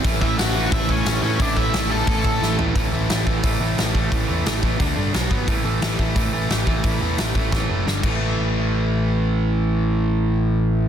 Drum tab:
CC |--------|--------|--------|--------|
HH |o-o-o-o-|o-o-o---|o-o-o-o-|o-o-o-o-|
SD |--o---o-|--o---o-|--o---o-|--o---o-|
FT |--------|-------o|--------|--------|
BD |oo--oo--|oo--oo--|o--oo--o|o--oo--o|

CC |--------|-------x|--------|--------|
HH |o-o-o-o-|o-o-----|--------|--------|
SD |--o---o-|--o-o-o-|--------|--------|
FT |--------|--------|--------|--------|
BD |o--oo--o|o--oo--o|--------|--------|